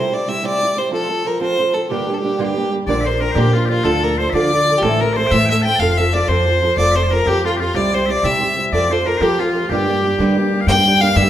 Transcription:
Already playing: C3 G3 C4 E4 G4 C5
0.12 G3 C4 E4 G4 D5
0.27 G3 C4 E4 G4 E5
0.43 C3 G3 C4 E4 G4 D5
0.61 G3 C4 E4 G4
0.75 G3 C4 E4 G4 C5
0.91 F3 C4 F4 A4
1.09 F3 C4 F4 A4
1.25 F3 C4 F4 A4 A#4
1.40 F3 C4 F4 A4 C5
1.58 F3 C4 F4 A4
1.74 F3 C4 F4 A4
1.89 G2 D3 G3 A#3 D4 G4
2.08 G3 A#3 D4 G4
2.14 G4 A4
2.23 G3 A#3 D4 G4
2.38 G2 D3 G3 A#3 D4 F4 G4
2.44 G4
2.55 G3 A#3 D4 G4
2.71 G3 A#3 D4 G4
2.87 A#1 A#2 D3 F3 C4 D4 A#4 D5
3.00 F3 E5
3.05 C4 D4 A#4 C5
3.19 F3 C4 D4 A#4
3.32 A#2 D3 G4 C5
3.36 F3 C4 D4 G4 A#4
3.53 F3 C4 D4 F4 A#4
3.66 F3 C4 F4 G4
3.70 D4 F4 A#4
3.84 D2 D3 F3 D4 F4 A4
4.02 F3 D4 F4 A4 A#4
4.18 F3 D4 F4 A4 C5
4.30 D3 E5
4.34 D3 F3 D4 F4 A4 D5
4.52 F3 D4 F4 A4
4.68 F3 D4 F4 A4
4.78 A1 G4
4.82 A2 E3 A3 C4 E4 A4
5.00 A3 C4 E4 A4 A#4
5.13 A3 C5 D5
5.18 C4 E4 A4
5.27 G5
5.31 A2 E3 A3 C4 E4 A4 E5
5.46 G5
5.50 A3 C4 E4 A4 E5
5.62 A3 G5 A5
5.66 C4 E4 A4
5.75 F1 F5 A5
5.80 F3 C4 F4 A4 F5
5.98 F3 C4 F4 A4 E5
6.13 F3 C4 F4 A4 D5
6.28 F2 F3 C4 F4 A4 C5
6.47 F3 C4 F4 A4
6.62 F3 C4 F4 A4
6.77 F1 F3 C4 F4 A4 D5
6.91 E5
6.95 F3 C4 A4 C5
7.03 D5
7.07 F3 A#4 C5
7.12 C4 F4 A4 A#4
7.26 F2 F3 C4 F4 G4 A4
7.44 F3 C4 F4 A4
7.57 F3 C4 F4 G4
7.62 A4
7.74 C2 C3 G3 C4 E4 G4 D5
7.93 G3 C4 E4 G4 C5
8.06 G3 C4 D5 E5
8.10 E4 G4 D5
8.23 C3 G3 C4 E4 G4 E5
8.40 G3 C4 E4 G4
8.56 G3 C4 E4 G4
8.72 F2 F3 C4 F4 A4 D5
8.90 F3 C4 F4 A4 C5
9.05 F3 C4 F4 A4 A#4
9.17 F3 C4 C5
9.21 F4 G4 A4
9.39 F3 C4 F4 A4
9.55 F3 C4 F4 A4
9.69 G2 D3 G3 A#3 D4 G4
9.88 G3 A#3 D4 G4
10.03 G3 A#3 D4 G4
10.18 G2 D3 G3 A#3 D4 G4
10.37 G3 A#3 D4 G4
10.53 G3 A#3 D4 G4
10.61 F5
10.67 G2 D3 G3 A#3 D4 G4 G5
10.77 G3 A#3 D4 G4
10.86 G3 A#3 D4 G4
11.00 G3 A#3 D4 G4 F5
11.15 G2 D3 G3 A#3 D4 G4 E5
11.24 A#3 D4 G4

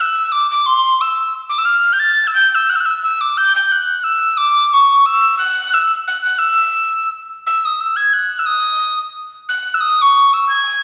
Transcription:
0.01 E6
0.32 D6
0.51 D6
0.66 C6
1.01 E6
1.49 D6
1.58 E6
1.65 F6
1.93 G6
1.99 A6
2.27 E6
2.34 G6
2.55 E6
2.69 F#6
2.76 E6
2.80 F#6
2.85 E6
3.03 E6
3.21 D6
3.37 G6
3.55 G6
3.71 F#6
4.04 E6
4.37 D6
4.73 C#6
5.06 E6
5.38 F#6
5.74 E6
6.07 F#6
6.25 F#6
6.38 E6
7.46 E6
7.65 D#6
7.80 E6
7.96 G#6
8.13 F#6
8.39 E6
8.46 D#6
9.49 F#6
9.74 E6
9.80 D#6
10.02 C#6
10.33 E6
10.49 G#6

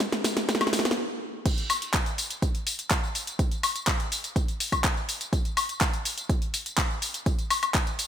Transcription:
0.00 kick, snare, closed hi-hat, tambourine
0.12 snare, closed hi-hat
0.24 snare, open hi-hat, tambourine
0.37 snare, closed hi-hat, tambourine
0.49 kick, snare, closed hi-hat, tambourine
0.55 snare
0.61 snare, closed hi-hat, high woodblock
0.67 snare
0.73 snare, open hi-hat, tambourine
0.79 snare
0.85 kick, snare, closed hi-hat, tambourine
0.91 snare
1.46 kick, closed hi-hat, tambourine, crash
1.58 closed hi-hat, tambourine
1.70 open hi-hat, tambourine, high woodblock
1.82 closed hi-hat, tambourine
1.94 kick, clap, closed hi-hat, tambourine
2.06 closed hi-hat, tambourine
2.18 open hi-hat, tambourine
2.31 closed hi-hat, tambourine
2.42 kick, closed hi-hat, tambourine
2.55 closed hi-hat, tambourine
2.67 open hi-hat, tambourine
2.79 closed hi-hat, tambourine
2.91 kick, clap, closed hi-hat, tambourine
3.04 tambourine
3.15 open hi-hat, tambourine
3.27 closed hi-hat, tambourine
3.39 kick, closed hi-hat, tambourine
3.51 closed hi-hat, tambourine
3.63 open hi-hat, tambourine, high woodblock
3.76 closed hi-hat, tambourine
3.87 kick, clap, closed hi-hat, tambourine
4.00 closed hi-hat, tambourine
4.12 open hi-hat, tambourine
4.24 closed hi-hat, tambourine
4.36 kick, closed hi-hat, tambourine
4.48 closed hi-hat, tambourine
4.60 open hi-hat, tambourine
4.72 kick, closed hi-hat, tambourine, high woodblock
4.84 kick, clap, closed hi-hat, tambourine
4.97 tambourine
5.09 open hi-hat, tambourine
5.21 closed hi-hat, tambourine
5.33 kick, closed hi-hat, tambourine
5.45 closed hi-hat, tambourine
5.57 open hi-hat, tambourine, high woodblock
5.69 closed hi-hat, tambourine
5.81 kick, clap, closed hi-hat, tambourine
5.93 closed hi-hat, tambourine
6.05 open hi-hat, tambourine
6.18 closed hi-hat, tambourine
6.29 kick, closed hi-hat, tambourine
6.42 closed hi-hat, tambourine
6.54 open hi-hat, tambourine
6.66 closed hi-hat, tambourine
6.78 kick, clap, closed hi-hat, tambourine
6.91 tambourine
7.02 open hi-hat, tambourine
7.14 closed hi-hat, tambourine
7.26 kick, closed hi-hat, tambourine
7.39 closed hi-hat, tambourine
7.50 open hi-hat, tambourine, high woodblock
7.63 closed hi-hat, tambourine, high woodblock
7.74 kick, clap, closed hi-hat, tambourine
7.87 closed hi-hat, tambourine
7.99 open hi-hat, tambourine

